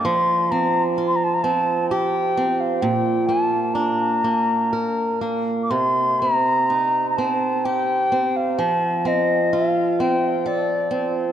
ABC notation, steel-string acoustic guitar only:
X:1
M:3/4
L:1/8
Q:1/4=64
K:Fmix
V:1 name="Steel-string acoustic guitar"
F, C F C G C | B,, B, D B, B B, | C, C E C G C | F, C F C A C |]